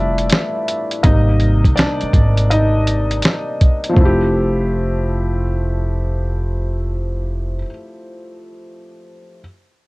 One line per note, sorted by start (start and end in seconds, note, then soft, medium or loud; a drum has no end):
0.00 0.27 F1 medium
0.00 1.06 E3 medium
0.00 1.04 G3 medium
0.00 1.05 A3 medium
0.00 1.05 D4 medium
0.00 1.05 E4 medium
0.00 1.05 F4 medium
0.00 1.05 D5 medium
0.00 1.05 E5 medium
0.00 1.06 F5 medium
0.18 closed hi-hat soft
0.30 snare loud
0.30 closed hi-hat medium
0.68 closed hi-hat medium
0.91 closed hi-hat soft
1.03 1.61 G#1 loud
1.03 3.93 C3 medium
1.03 3.93 G3 soft
1.03 3.93 A#3 medium
1.03 1.74 D#4 medium
1.03 1.73 D#5 medium
1.03 kick loud
1.03 closed hi-hat medium
1.40 closed hi-hat medium
1.64 1.77 C2 medium
1.64 kick medium
1.64 closed hi-hat soft
1.75 2.47 D4 medium
1.75 2.52 D5 medium
1.75 snare loud
1.75 closed hi-hat medium
2.00 muted upright bass stroke soft
2.00 closed hi-hat soft
2.13 3.20 G#1 medium
2.13 kick medium
2.13 closed hi-hat medium
2.37 closed hi-hat soft
2.50 3.57 D#4 medium
2.50 3.56 D#5 medium
2.50 closed hi-hat medium
2.87 closed hi-hat medium
3.11 closed hi-hat soft
3.22 snare loud
3.22 closed hi-hat medium
3.61 kick medium
3.61 closed hi-hat medium
3.84 closed hi-hat soft
3.89 7.54 F3 medium
3.93 7.62 F1 medium
3.93 7.58 A3 medium
3.93 7.62 C4 medium
3.93 kick medium
4.01 7.66 E4 medium
4.05 7.70 G4 medium